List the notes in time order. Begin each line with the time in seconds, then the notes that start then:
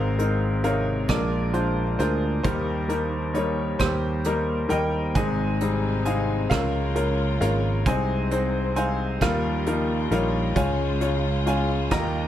Already playing: G#1 G#2 G#3 C4 D#4 A#4 C5 F5
0.19 G#3 C4 D#4 A#4, closed hi-hat
0.64 C3 G#3 D#4 A#4 C#5 F5, closed hi-hat
1.08 A#1 A#2 G#3 D4 F4 A#4 D5, kick, cross-stick, closed hi-hat
1.53 G#3 D4 F4 C5, closed hi-hat
1.99 D2 G#3 D4 F4 G#4 A#4 C5, closed hi-hat
2.43 D#2 D#3 G3 A#3 D#4 G4 A#4 C5, kick, closed hi-hat
2.88 G3 A#3 D#4 A#4, closed hi-hat
3.34 G3 A#3 D#4 A#4 C#5, closed hi-hat
3.79 D#2 G4 C5, kick, cross-stick, closed hi-hat
4.24 G3 A#3 D#4 A#4, closed hi-hat
4.69 D#2 G3 A#3 D#4 A#4 D#5 G5, closed hi-hat
5.15 G#1 G#2 C3 D#3 G#3 C4 D#4 G#4 D#5 G#5, kick, closed hi-hat
5.61 G3 C4 D#4 G#4, closed hi-hat
6.05 G#3 C4 D#4 G#4 F5 G#5, closed hi-hat
6.50 C#2 C#3 F3 G#3 A#3 C#4 F4 A#4 C#5 F5, kick, cross-stick, closed hi-hat
6.95 G#3 C#4 F4 A#4, closed hi-hat
7.41 G#1 G#3 C#4 F4 A#4 C#5 F5, closed hi-hat
7.86 C2 C3 D#3 G#3 C4 D#4 C5 D#5 G#5, kick, closed hi-hat
8.31 G#3 C4 D#4 C5, closed hi-hat
8.75 G#3 C4 D#4 C5 F5 G#5, closed hi-hat
9.21 D#2 D#3 F3 G3 A#3 D#4 F4 A#4 F5, kick, cross-stick, closed hi-hat
9.66 G3 D#4 F4 A#4, closed hi-hat
10.11 A#1 G3 D#4 F4 A#4 C#5 F5, closed hi-hat
10.56 C#2 C#3 G#3 C#4 F4 C#5 F5 G#5, kick, closed hi-hat
11.01 G#3 C#4 F4 C#5, closed hi-hat
11.46 G#3 C#4 F4 C#5 F5 G#5, closed hi-hat
11.91 D#2 D#3 F3 G3 A#3 F4 G4 D#5 G5 A#5, kick, cross-stick, closed hi-hat